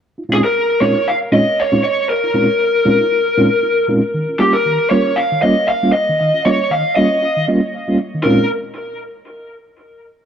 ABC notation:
X:1
M:4/4
L:1/16
Q:"Swing 16ths" 1/4=117
K:Bbdor
V:1 name="Lead electric guitar"
z2 A B3 d2 f2 e2 d2 d2 | B12- B2 z2 | z2 G B3 d2 f2 e2 f2 e2- | e2 d2 f2 e4 z6 |
B2 z12 z2 |]
V:2 name="Reed electric piano"
z [EF] [B,,A,CDEF] z3 [B,,A,CDEF] [EF] [EF] z [B,,A,CDEF] z2 [B,,A,CDEF] z2 | z [EF] [B,,A,CDEF] z3 [B,,A,CDEF] [EF] [EF] z [B,,A,CDEF] z [EF] z [B,,A,CDEF] z | E, [DF] [G,B,DF] z E, z [G,B,DF] z [DF] E, [G,B,DF] z2 [G,B,DF] z E, | E, [DF] [G,B,DF] z E, z [G,B,DF] z [DF] E, [G,B,DF] z2 [G,B,DF] z E, |
[B,,A,CDEF]2 z12 z2 |]